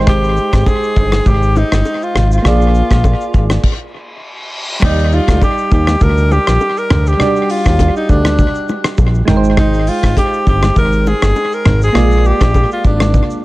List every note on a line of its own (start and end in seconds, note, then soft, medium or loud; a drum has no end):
0.00 0.39 G#1 loud
0.00 2.10 G#3 medium
0.00 2.11 D#4 medium
0.00 2.15 C5 medium
0.00 2.11 G5 medium
0.07 0.69 G4 loud
0.07 kick loud
0.07 cross-stick loud
0.07 low conga medium
0.07 shaker medium
0.24 shaker medium
0.37 shaker medium
0.53 0.64 G#1 medium
0.53 kick medium
0.53 cross-stick medium
0.53 low bongo medium
0.53 shaker medium
0.66 1.29 G#4 loud
0.66 kick medium
0.66 high bongo medium
0.66 shaker medium
0.83 shaker medium
0.96 1.20 G1 loud
0.96 kick loud
0.96 shaker medium
1.12 cross-stick medium
1.12 low bongo medium
1.12 shaker medium
1.26 1.63 G#1 loud
1.26 1.59 G4 loud
1.26 kick loud
1.26 low conga medium
1.26 shaker medium
1.42 shaker medium
1.56 2.05 D#4 medium
1.56 high bongo medium
1.56 low bongo medium
1.56 shaker medium
1.72 1.83 G1 medium
1.72 cross-stick loud
1.72 high bongo medium
1.72 shaker loud
1.85 high bongo medium
1.85 shaker medium
2.02 2.32 F4 medium
2.02 shaker soft
2.15 2.39 G#1 medium
2.15 cross-stick medium
2.15 low conga medium
2.15 shaker medium
2.32 3.47 F4 medium
2.32 shaker loud
2.42 2.82 A#1 loud
2.42 3.60 A#3 medium
2.42 3.61 F4 medium
2.42 3.62 G#4 medium
2.42 cross-stick loud
2.42 low conga medium
2.42 shaker medium
2.47 3.62 D5 medium
2.61 shaker soft
2.75 shaker medium
2.91 3.15 A#1 medium
2.91 kick medium
2.91 cross-stick medium
2.91 low bongo medium
2.91 shaker medium
3.04 kick medium
3.04 high bongo medium
3.04 shaker medium
3.21 shaker medium
3.34 3.58 G#1 medium
3.34 kick loud
3.34 shaker medium
3.50 cross-stick medium
3.50 low bongo medium
3.50 shaker medium
3.64 kick loud
3.64 crash medium
3.64 reverse cymbal medium
4.80 5.20 D#2 loud
4.80 7.15 G3 medium
4.80 7.15 D#4 medium
4.80 7.16 G4 medium
4.80 kick loud
4.80 cross-stick loud
4.80 crash loud
4.80 low conga medium
4.84 5.15 D#4 loud
4.84 7.17 D5 medium
4.99 shaker medium
5.12 5.43 F4 medium
5.12 shaker medium
5.28 5.39 D2 loud
5.28 kick medium
5.28 cross-stick medium
5.28 low bongo medium
5.28 shaker medium
5.42 5.70 G4 loud
5.42 kick loud
5.42 high bongo medium
5.42 shaker medium
5.58 shaker medium
5.71 5.96 D#2 loud
5.71 6.04 G4 loud
5.71 kick loud
5.71 shaker medium
5.87 cross-stick medium
5.87 low bongo medium
5.87 shaker medium
6.01 6.39 D2 loud
6.01 6.33 A#4 loud
6.01 kick loud
6.01 low conga medium
6.01 shaker medium
6.17 shaker medium
6.31 6.79 G4 loud
6.31 low bongo medium
6.31 shaker medium
6.47 6.58 A#1 medium
6.47 cross-stick loud
6.47 shaker loud
6.60 high bongo medium
6.60 shaker medium
6.77 7.09 A#4 loud
6.77 shaker soft
6.90 7.14 D2 loud
6.90 cross-stick loud
6.90 mid tom loud
6.90 low conga medium
6.90 shaker medium
7.07 7.52 G4 loud
7.07 shaker loud
7.17 9.22 G3 medium
7.17 9.23 D4 medium
7.17 7.27 F#4 soft
7.17 cross-stick loud
7.17 low conga medium
7.17 shaker medium
7.22 9.25 D5 medium
7.27 9.27 G4 medium
7.36 shaker medium
7.50 7.96 F4 loud
7.50 open hi-hat medium
7.50 shaker medium
7.66 7.90 D#2 loud
7.66 kick medium
7.66 cross-stick medium
7.66 low bongo medium
7.66 shaker medium
7.79 kick medium
7.79 hi-hat pedal medium
7.79 high bongo medium
7.79 shaker medium
7.96 8.11 D#4 medium
7.96 shaker medium
8.09 8.47 D2 medium
8.09 8.69 D4 medium
8.09 kick loud
8.09 shaker medium
8.25 cross-stick medium
8.25 low bongo medium
8.25 shaker medium
8.38 kick loud
8.38 low conga medium
8.38 shaker medium
8.55 shaker medium
8.68 low bongo medium
8.68 shaker medium
8.84 cross-stick loud
8.84 shaker loud
8.98 9.22 A#1 medium
8.98 kick loud
8.98 high bongo medium
8.98 shaker medium
9.14 shaker soft
9.25 9.89 G#1 loud
9.25 11.60 G#3 medium
9.25 11.61 D#4 medium
9.25 11.62 G5 medium
9.25 cross-stick medium
9.25 mid tom loud
9.25 low conga medium
9.25 shaker medium
9.30 9.36 A#4 medium
9.37 11.66 C5 medium
9.44 shaker loud
9.57 9.90 D#4 loud
9.57 kick loud
9.57 cross-stick loud
9.57 low conga medium
9.57 shaker medium
9.74 shaker medium
9.87 10.17 F4 loud
9.87 open hi-hat medium
9.87 shaker medium
10.03 10.14 G#1 medium
10.03 kick medium
10.03 cross-stick medium
10.03 low bongo medium
10.03 shaker medium
10.17 10.45 G4 loud
10.17 kick medium
10.17 hi-hat pedal medium
10.17 high bongo medium
10.17 shaker medium
10.33 shaker medium
10.47 10.71 G1 medium
10.47 10.75 G4 loud
10.47 kick loud
10.47 shaker medium
10.63 cross-stick medium
10.63 low bongo medium
10.63 shaker medium
10.76 11.14 G#1 loud
10.76 11.09 A#4 loud
10.76 kick loud
10.76 low conga medium
10.76 shaker medium
10.93 shaker medium
11.06 11.55 G#4 loud
11.06 low bongo medium
11.06 shaker medium
11.22 11.33 G1 loud
11.22 cross-stick loud
11.22 shaker loud
11.35 high bongo medium
11.35 shaker medium
11.52 11.83 A#4 loud
11.52 shaker soft
11.65 11.89 G#1 loud
11.65 cross-stick medium
11.65 mid tom loud
11.65 low conga medium
11.65 shaker medium
11.82 12.28 G#4 loud
11.82 shaker loud
11.93 12.32 A#1 loud
11.93 13.45 G#3 medium
11.93 13.45 A#3 medium
11.93 13.45 F4 medium
11.93 cross-stick loud
11.93 low conga medium
11.93 shaker medium
11.97 13.45 D5 medium
12.12 shaker medium
12.25 12.72 G4 loud
12.25 shaker medium
12.41 12.65 A#1 medium
12.41 kick medium
12.41 cross-stick medium
12.41 low bongo medium
12.41 shaker loud
12.54 kick medium
12.54 high bongo medium
12.54 shaker medium
12.71 12.84 F4 medium
12.71 shaker medium
12.84 13.22 G#1 medium
12.84 13.40 D4 medium
12.84 kick loud
12.84 shaker medium
13.00 cross-stick loud
13.00 low bongo medium
13.00 shaker medium
13.14 kick loud
13.14 low conga medium
13.14 shaker medium
13.30 shaker medium